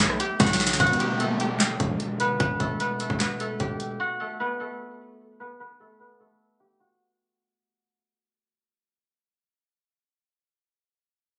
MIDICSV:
0, 0, Header, 1, 5, 480
1, 0, Start_track
1, 0, Key_signature, 1, "minor"
1, 0, Tempo, 400000
1, 960, Time_signature, 4, 2, 24, 8
1, 13664, End_track
2, 0, Start_track
2, 0, Title_t, "Guzheng"
2, 0, Program_c, 0, 107
2, 0, Note_on_c, 0, 57, 60
2, 0, Note_on_c, 0, 59, 60
2, 0, Note_on_c, 0, 69, 81
2, 0, Note_on_c, 0, 71, 75
2, 237, Note_on_c, 0, 67, 90
2, 247, Note_on_c, 0, 79, 68
2, 480, Note_on_c, 0, 66, 78
2, 488, Note_on_c, 0, 78, 59
2, 552, Note_off_c, 0, 67, 0
2, 552, Note_off_c, 0, 79, 0
2, 954, Note_off_c, 0, 66, 0
2, 958, Note_on_c, 0, 66, 93
2, 963, Note_off_c, 0, 78, 0
2, 967, Note_on_c, 0, 78, 81
2, 1199, Note_on_c, 0, 67, 88
2, 1209, Note_on_c, 0, 79, 64
2, 1271, Note_off_c, 0, 66, 0
2, 1271, Note_off_c, 0, 78, 0
2, 1434, Note_off_c, 0, 69, 0
2, 1439, Note_on_c, 0, 69, 74
2, 1444, Note_off_c, 0, 57, 0
2, 1449, Note_on_c, 0, 57, 62
2, 1675, Note_off_c, 0, 67, 0
2, 1680, Note_on_c, 0, 67, 72
2, 1684, Note_off_c, 0, 79, 0
2, 1689, Note_on_c, 0, 79, 56
2, 1977, Note_off_c, 0, 71, 0
2, 2640, Note_on_c, 0, 71, 72
2, 2646, Note_off_c, 0, 59, 0
2, 2650, Note_on_c, 0, 59, 62
2, 2875, Note_off_c, 0, 71, 0
2, 2880, Note_on_c, 0, 71, 89
2, 2885, Note_off_c, 0, 59, 0
2, 2890, Note_on_c, 0, 59, 74
2, 3118, Note_off_c, 0, 69, 0
2, 3123, Note_on_c, 0, 69, 75
2, 3127, Note_off_c, 0, 57, 0
2, 3132, Note_on_c, 0, 57, 60
2, 3356, Note_off_c, 0, 71, 0
2, 3361, Note_on_c, 0, 71, 80
2, 3366, Note_off_c, 0, 59, 0
2, 3371, Note_on_c, 0, 59, 62
2, 3552, Note_off_c, 0, 79, 0
2, 3596, Note_off_c, 0, 69, 0
2, 3600, Note_on_c, 0, 69, 64
2, 3605, Note_off_c, 0, 57, 0
2, 3610, Note_on_c, 0, 57, 51
2, 3837, Note_off_c, 0, 71, 0
2, 3842, Note_on_c, 0, 71, 84
2, 3846, Note_off_c, 0, 59, 0
2, 3851, Note_on_c, 0, 59, 64
2, 4077, Note_off_c, 0, 69, 0
2, 4082, Note_on_c, 0, 69, 80
2, 4086, Note_off_c, 0, 57, 0
2, 4091, Note_on_c, 0, 57, 66
2, 4318, Note_off_c, 0, 67, 0
2, 4322, Note_on_c, 0, 67, 84
2, 4332, Note_on_c, 0, 79, 68
2, 4797, Note_on_c, 0, 66, 103
2, 4807, Note_on_c, 0, 78, 79
2, 4869, Note_off_c, 0, 67, 0
2, 4869, Note_off_c, 0, 79, 0
2, 5035, Note_off_c, 0, 69, 0
2, 5040, Note_on_c, 0, 69, 81
2, 5045, Note_off_c, 0, 57, 0
2, 5049, Note_on_c, 0, 57, 61
2, 5275, Note_off_c, 0, 71, 0
2, 5280, Note_on_c, 0, 71, 93
2, 5285, Note_off_c, 0, 59, 0
2, 5289, Note_on_c, 0, 59, 74
2, 5515, Note_off_c, 0, 69, 0
2, 5520, Note_on_c, 0, 69, 71
2, 5524, Note_off_c, 0, 57, 0
2, 5529, Note_on_c, 0, 57, 55
2, 6475, Note_off_c, 0, 71, 0
2, 6480, Note_on_c, 0, 71, 78
2, 6485, Note_off_c, 0, 59, 0
2, 6490, Note_on_c, 0, 59, 65
2, 6717, Note_off_c, 0, 71, 0
2, 6722, Note_on_c, 0, 71, 93
2, 6726, Note_off_c, 0, 59, 0
2, 6731, Note_on_c, 0, 59, 72
2, 6737, Note_off_c, 0, 78, 0
2, 6956, Note_off_c, 0, 69, 0
2, 6961, Note_on_c, 0, 69, 81
2, 6966, Note_off_c, 0, 57, 0
2, 6970, Note_on_c, 0, 57, 62
2, 7196, Note_off_c, 0, 71, 0
2, 7200, Note_on_c, 0, 71, 68
2, 7205, Note_off_c, 0, 59, 0
2, 7210, Note_on_c, 0, 59, 56
2, 7434, Note_off_c, 0, 69, 0
2, 7439, Note_on_c, 0, 69, 75
2, 7444, Note_off_c, 0, 57, 0
2, 7448, Note_on_c, 0, 57, 55
2, 7722, Note_off_c, 0, 66, 0
2, 7919, Note_on_c, 0, 67, 88
2, 7928, Note_on_c, 0, 79, 64
2, 8160, Note_on_c, 0, 66, 74
2, 8169, Note_on_c, 0, 78, 56
2, 8232, Note_off_c, 0, 67, 0
2, 8232, Note_off_c, 0, 79, 0
2, 9659, Note_off_c, 0, 71, 0
2, 10074, Note_off_c, 0, 69, 0
2, 10099, Note_off_c, 0, 78, 0
2, 10937, Note_off_c, 0, 59, 0
2, 11084, Note_off_c, 0, 66, 0
2, 11443, Note_off_c, 0, 57, 0
2, 13664, End_track
3, 0, Start_track
3, 0, Title_t, "808-style bass"
3, 0, Program_c, 1, 38
3, 0, Note_on_c, 1, 35, 99
3, 224, Note_off_c, 1, 35, 0
3, 479, Note_on_c, 1, 35, 108
3, 940, Note_off_c, 1, 35, 0
3, 960, Note_on_c, 1, 28, 109
3, 2112, Note_off_c, 1, 28, 0
3, 2160, Note_on_c, 1, 28, 104
3, 2851, Note_off_c, 1, 28, 0
3, 2881, Note_on_c, 1, 28, 111
3, 3111, Note_off_c, 1, 28, 0
3, 3120, Note_on_c, 1, 28, 101
3, 3696, Note_off_c, 1, 28, 0
3, 3720, Note_on_c, 1, 28, 101
3, 4296, Note_off_c, 1, 28, 0
3, 4320, Note_on_c, 1, 28, 103
3, 4781, Note_off_c, 1, 28, 0
3, 13664, End_track
4, 0, Start_track
4, 0, Title_t, "Downlifter"
4, 0, Program_c, 2, 103
4, 960, Note_on_c, 2, 60, 82
4, 4800, Note_off_c, 2, 60, 0
4, 13664, End_track
5, 0, Start_track
5, 0, Title_t, "Drums"
5, 119, Note_on_c, 9, 37, 99
5, 239, Note_off_c, 9, 37, 0
5, 240, Note_on_c, 9, 42, 80
5, 360, Note_off_c, 9, 42, 0
5, 478, Note_on_c, 9, 42, 75
5, 479, Note_on_c, 9, 36, 104
5, 479, Note_on_c, 9, 38, 62
5, 559, Note_off_c, 9, 38, 0
5, 559, Note_on_c, 9, 38, 61
5, 598, Note_off_c, 9, 42, 0
5, 599, Note_off_c, 9, 36, 0
5, 639, Note_off_c, 9, 38, 0
5, 639, Note_on_c, 9, 38, 85
5, 718, Note_on_c, 9, 46, 73
5, 720, Note_off_c, 9, 38, 0
5, 720, Note_on_c, 9, 38, 82
5, 720, Note_on_c, 9, 42, 43
5, 799, Note_off_c, 9, 38, 0
5, 799, Note_off_c, 9, 42, 0
5, 799, Note_on_c, 9, 38, 104
5, 799, Note_on_c, 9, 42, 47
5, 838, Note_off_c, 9, 46, 0
5, 880, Note_off_c, 9, 38, 0
5, 880, Note_off_c, 9, 42, 0
5, 880, Note_on_c, 9, 38, 99
5, 880, Note_on_c, 9, 42, 54
5, 959, Note_on_c, 9, 36, 108
5, 960, Note_off_c, 9, 42, 0
5, 960, Note_on_c, 9, 42, 82
5, 1000, Note_off_c, 9, 38, 0
5, 1040, Note_off_c, 9, 42, 0
5, 1040, Note_on_c, 9, 42, 64
5, 1079, Note_off_c, 9, 36, 0
5, 1121, Note_off_c, 9, 42, 0
5, 1121, Note_on_c, 9, 42, 70
5, 1201, Note_off_c, 9, 42, 0
5, 1201, Note_on_c, 9, 42, 74
5, 1321, Note_off_c, 9, 42, 0
5, 1440, Note_on_c, 9, 42, 78
5, 1560, Note_off_c, 9, 42, 0
5, 1679, Note_on_c, 9, 42, 85
5, 1799, Note_off_c, 9, 42, 0
5, 1919, Note_on_c, 9, 39, 85
5, 1920, Note_on_c, 9, 38, 105
5, 1921, Note_on_c, 9, 42, 88
5, 2039, Note_off_c, 9, 39, 0
5, 2040, Note_off_c, 9, 38, 0
5, 2041, Note_off_c, 9, 42, 0
5, 2160, Note_on_c, 9, 36, 94
5, 2160, Note_on_c, 9, 42, 80
5, 2280, Note_off_c, 9, 36, 0
5, 2280, Note_off_c, 9, 42, 0
5, 2399, Note_on_c, 9, 42, 71
5, 2519, Note_off_c, 9, 42, 0
5, 2638, Note_on_c, 9, 42, 69
5, 2758, Note_off_c, 9, 42, 0
5, 2880, Note_on_c, 9, 36, 113
5, 2881, Note_on_c, 9, 42, 77
5, 3000, Note_off_c, 9, 36, 0
5, 3001, Note_off_c, 9, 42, 0
5, 3120, Note_on_c, 9, 36, 100
5, 3122, Note_on_c, 9, 42, 71
5, 3240, Note_off_c, 9, 36, 0
5, 3242, Note_off_c, 9, 42, 0
5, 3360, Note_on_c, 9, 42, 78
5, 3480, Note_off_c, 9, 42, 0
5, 3600, Note_on_c, 9, 42, 86
5, 3720, Note_off_c, 9, 42, 0
5, 3720, Note_on_c, 9, 36, 96
5, 3840, Note_off_c, 9, 36, 0
5, 3840, Note_on_c, 9, 39, 85
5, 3841, Note_on_c, 9, 38, 110
5, 3841, Note_on_c, 9, 42, 85
5, 3960, Note_off_c, 9, 39, 0
5, 3961, Note_off_c, 9, 38, 0
5, 3961, Note_off_c, 9, 42, 0
5, 4081, Note_on_c, 9, 42, 78
5, 4201, Note_off_c, 9, 42, 0
5, 4320, Note_on_c, 9, 36, 96
5, 4320, Note_on_c, 9, 42, 71
5, 4440, Note_off_c, 9, 36, 0
5, 4440, Note_off_c, 9, 42, 0
5, 4559, Note_on_c, 9, 42, 74
5, 4679, Note_off_c, 9, 42, 0
5, 13664, End_track
0, 0, End_of_file